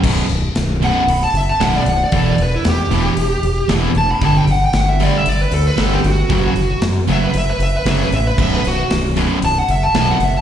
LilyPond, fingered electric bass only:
\new Staff \with { instrumentName = "Fingered electric bass" } { \clef bass \time 4/4 \key b \minor \tempo 4 = 115 b,,,8 b,,,8 b,,,4 b,,,8 fis,,8 b,,,8 b,,,8 | e,,8 e,,8 e,8 e,,8 e,,8 e,,8 e,,8 e,,8 | g,,8 g,,8 g,,4 g,,8 d,8 g,,8 g,,8 | fis,,8 fis,,8 fis,8 fis,,8 fis,,8 fis,,8 fis,,8 a,,8 |
b,,,8 b,,,8 b,,,4 b,,,8 fis,,8 b,,,8 fis,,8 | }